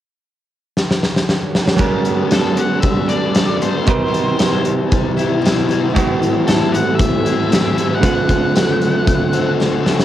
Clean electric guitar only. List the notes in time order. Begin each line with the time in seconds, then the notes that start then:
1.77 G3 A3 D4 G4 B4
3.87 C3 E3 G3 C4 E4 B4
5.94 A2 E3 G3 C4
5.98 G4
8.01 D3 A3 C4 F#4